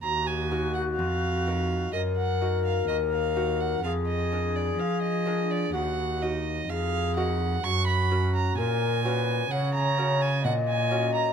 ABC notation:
X:1
M:4/4
L:1/16
Q:1/4=63
K:Ebm
V:1 name="Violin"
b a2 g f4 e g2 f e f2 g | f e2 =d f e2 d g2 e2 f2 g2 | d' c'2 b a4 g b2 a g a2 b |]
V:2 name="Flute"
G8 B8 | A8 G2 z2 A4 | G4 B2 c2 d4 e4 |]
V:3 name="Lute"
z2 [EGB]4 [EGB]2 z2 [EGB]4 [EGB]2 | z2 [=DAB]4 [DAB]2 z2 [EGB]4 [EGB]2 | z2 [DGB]4 [DGB]2 z2 [DGB]4 [DGB]2 |]
V:4 name="Lute" clef=bass
E,,4 F,,4 G,,4 E,,4 | F,,4 F,4 E,,4 F,,4 | G,,4 B,,4 D,4 B,,4 |]
V:5 name="Cello" clef=bass
E,,4 F,,4 G,,4 E,,4 | F,,4 F,4 E,,4 F,,4 | G,,4 B,,4 D,4 B,,4 |]